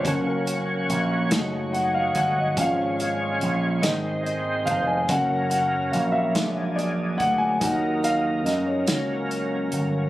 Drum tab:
HH |xxxxxx|xxxxxx|xxxxxx|xxxxxx|
SD |---o--|---o--|---o--|--oo--|
BD |o----o|o----o|o----o|o-----|